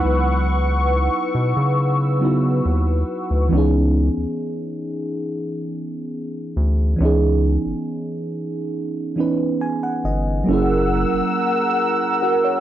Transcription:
Already playing: F#3 B3 D#4 E4 B4 F#5 C#6 E6
0.04 C#2
1.35 B2
1.56 C#3
2.20 F#3 B3 D#4 E4
2.25 F#4
2.65 D#2
3.30 D2
3.48 C#2 E3 B3
3.53 C#4 D#4
3.57 G#4
4.17 D2
6.56 D2
6.96 C#2 E3 B3
7.01 C#4 D#4
7.05 G#4
7.65 G1
9.16 E3 B3 C#4 D#4
9.20 B4
9.61 G#5
9.83 F#5
10.04 G1 D#5
10.44 F#1 F#3 A#3 A#4 F#5 E6
10.49 C#4 E4
10.53 G#4
11.13 F#1
12.22 F#4 A#4
12.44 A#4 C#5

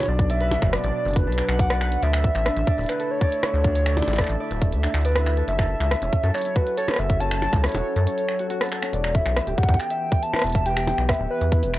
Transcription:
Already playing: B2 F#3 D4 E4 F#4 B4 D5 E5
0.00 closed hi-hat, percussion blips
0.03 closed hi-hat, percussion blips
0.06 B1 D4 D5, percussion blips
0.19 kick, closed hi-hat
0.30 D5 E5, closed hi-hat
0.41 B4, closed hi-hat
0.51 F#4, percussion blips
0.62 F#1 B4, finger snap, kick, closed hi-hat
0.73 D5, cross-stick, closed hi-hat
0.84 A1 D5, closed hi-hat
1.05 F#1, closed hi-hat
1.08 closed hi-hat
1.11 closed hi-hat
1.14 kick, closed hi-hat
1.16 B4, closed hi-hat
1.27 B1 D4
1.32 closed hi-hat
1.38 D6, finger snap
1.49 B1 F#5, finger snap, closed hi-hat
1.59 F#5 D6, kick, closed hi-hat
1.70 D5, cross-stick, closed hi-hat
1.81 B4, finger snap
1.92 closed hi-hat
2.03 D2 D3 D5 E5, closed hi-hat
2.13 finger snap, closed hi-hat
2.24 kick
2.33 A1 E4, finger snap, closed hi-hat
2.45 A3 D4, cross-stick, closed hi-hat
2.56 A1, closed hi-hat
2.67 D5, kick
2.78 D1 E4, closed hi-hat
2.81 closed hi-hat
2.84 closed hi-hat
2.86 E4 B4, finger snap, closed hi-hat
2.89 closed hi-hat
3.00 A4, closed hi-hat
3.11 C#5
3.21 D5, kick, closed hi-hat
3.32 closed hi-hat
3.43 E5, finger snap, cross-stick, closed hi-hat, percussion blips
3.54 D2
3.64 D4, kick, closed hi-hat
3.75 C#5, closed hi-hat
3.86 D5, finger snap, closed hi-hat
3.97 E4 D5, percussion blips
4.02 percussion blips
4.07 A1 E4, finger snap, closed hi-hat, percussion blips
4.11 finger snap
4.13 finger snap, percussion blips
4.16 A4, finger snap, kick
4.19 finger snap, cross-stick, closed hi-hat
4.21 finger snap
4.24 finger snap
4.27 A1, finger snap, closed hi-hat
4.40 D5
4.51 D1, closed hi-hat
4.62 kick, closed hi-hat
4.72 D2, closed hi-hat
4.83 D4, finger snap
4.94 D2, finger snap, closed hi-hat
4.98 closed hi-hat
5.01 D5, closed hi-hat
5.05 B4, closed hi-hat
5.08 closed hi-hat
5.12 cross-stick, closed hi-hat
5.16 E4, closed hi-hat
5.26 E4, finger snap
5.37 A4, closed hi-hat
5.48 F#1 F#3 E5, closed hi-hat
5.59 A4, finger snap, kick
5.80 C#2, finger snap, closed hi-hat
5.91 C#4, cross-stick, closed hi-hat
6.02 E1 C#4, closed hi-hat
6.13 kick
6.23 F#2 A4, closed hi-hat
6.34 E4 C#5, finger snap, closed hi-hat
6.38 closed hi-hat
6.42 E4, closed hi-hat
6.45 closed hi-hat
6.56 F#4 B4, kick
6.62 A4
6.67 closed hi-hat
6.77 A4 C#5, closed hi-hat
6.88 finger snap, cross-stick, closed hi-hat, percussion blips
6.91 cross-stick
6.94 cross-stick
6.96 F#1 E5, cross-stick
7.10 kick, closed hi-hat
7.20 C#4 A5, closed hi-hat
7.31 finger snap, closed hi-hat
7.42 A4, percussion blips
7.53 C#2 E4, finger snap, kick
7.63 E4 C#5, cross-stick, closed hi-hat
7.67 closed hi-hat
7.69 closed hi-hat
7.72 E1 F#4, closed hi-hat, percussion blips
7.96 F#2 A4, closed hi-hat
8.07 C#5, closed hi-hat
8.18 closed hi-hat
8.29 finger snap
8.39 F#4, closed hi-hat
8.50 F#4, closed hi-hat
8.61 A4, cross-stick, closed hi-hat
8.64 closed hi-hat
8.66 closed hi-hat
8.69 A4, finger snap, closed hi-hat
8.82 C#4, finger snap, closed hi-hat
8.93 E1 E3 D5, closed hi-hat
9.04 finger snap, closed hi-hat
9.09 B3
9.15 E4 E5, kick
9.26 B1, finger snap, closed hi-hat
9.36 E5, cross-stick, closed hi-hat
9.47 D1 G4, closed hi-hat
9.58 G4 F#5, kick
9.63 kick
9.69 E2 G5, kick, closed hi-hat
9.74 kick
9.79 G5, finger snap, closed hi-hat
9.90 E5, closed hi-hat
10.12 G4, kick, closed hi-hat
10.23 A5, closed hi-hat
10.33 E4, finger snap, cross-stick, closed hi-hat, percussion blips
10.36 cross-stick, closed hi-hat
10.39 cross-stick, closed hi-hat
10.42 E1, cross-stick, closed hi-hat
10.44 closed hi-hat
10.47 closed hi-hat
10.50 closed hi-hat
10.52 E5, kick, closed hi-hat
10.55 closed hi-hat
10.66 G4 G5, closed hi-hat
10.77 G4, finger snap, closed hi-hat
10.87 G5, percussion blips
10.98 B1, finger snap, closed hi-hat
11.09 E5, kick, cross-stick, closed hi-hat
11.14 closed hi-hat
11.20 D1
11.31 B4
11.41 E2, closed hi-hat
11.52 E4, kick, closed hi-hat
11.63 E1, closed hi-hat
11.74 E5, finger snap

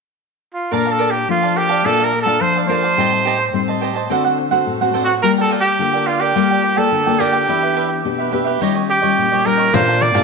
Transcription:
0.54 F4
0.71 A#2 A3 D4 F4 A#4 D5 F5 A5
0.85 D5 F5 A5
0.91 A4
0.99 A#4 D5 F5 A5
1.11 G4, muted cavaquinho stroke
1.28 F3 A3 D4 F4
1.43 D5 F5 A5
1.56 G4 A#4 D5 F5 A5
1.69 D5 F5 A5
1.84 A#2 A3 D4 F4 A4 A#4 D5 F5 A5
1.99 D5 F5 A5
2.04 A#4
2.12 muted cavaquinho stroke
2.22 A3 D4 A4 A5
2.26 F4 D5 F5
2.41 F3 C5
2.56 D5 F5 A5
2.68 A3 D4 F4 A#4 C5 D5 F5 A5
2.82 D5 F5 A5
2.97 A2 G3 C4 D#4 G4 C5 D#5 A5
3.12 C5 D#5 A5
3.25 G4 C5 D#5 A5
3.38 muted cavaquinho stroke
3.53 A2 G3 C4 D#4
3.68 C5 D#5 A5
3.81 G4 C5 D#5 A5
3.95 C5 D#5 A5
4.10 D3 A3 C4 D4 F#4 A4 C5 F#5
4.24 A4 C5 F#5
4.38 muted cavaquinho stroke
4.51 A3 C4 F#4 A4 C5 F#5
4.66 A2
4.81 A3 C4 F#4 A4 C5 F#5
4.93 A3 C4 D4 F#4 A4 C5 F#5
5.04 F#4 C5 F#5
5.09 A4
5.22 G3 A#3 F4 A4 A#4 D5 G5
5.38 A4 A#4 D5 G5
5.50 F4 A#4 D5 G5
5.60 G4, muted cavaquinho stroke
5.79 D3 A#3 F4 A4
5.93 A#4 D5 G5
6.06 F4 A#4 D5 G5
6.20 G4 A#4 D5 G5
6.35 G3 A#3 F4 A4 A#4 D5 G5
6.51 A#4 D5 G5
6.63 muted cavaquinho stroke
6.76 A#3 F4 A4 A#4 D5 G5
6.92 D3
7.06 A#3 F4 A4 A#4 D5 G5
7.19 A#3 F4 G4 A4 A#4 D5 G5
7.32 A#4 D5 G5
7.47 E3 B3 D4 G4 B4 E5
7.63 G4 B4 E5
7.75 D4 G4 B4 E5
7.89 muted cavaquinho stroke
8.05 B2 B3 D4 G4
8.18 G4 B4 E5
8.31 B3 D4 G4 B4 E5
8.45 G4 B4 E5
8.61 D#3 G3 C#4 D#4 F4 G4 C#5 D#5
8.74 G4 C#5 D#5
8.88 G4, muted cavaquinho stroke
9.02 G3 C#4 F4 G4 C#5 D#5
9.18 A#2
9.32 G3 C#4 F4 G4 C#5 D#5
9.45 G3 C#4 D#4 F4 G4 A#4 C#5 D#5
9.57 G4 C#5 D#5
9.73 A#2 A3 D4 F4 A#4 C5 D5 F5 A5, pandeiro
9.88 D5 F5 A5, pandeiro
10.01 D5, muted cavaquinho stroke, pandeiro
10.14 A#2 A3 D4 F4 D5 F5 A5, pandeiro

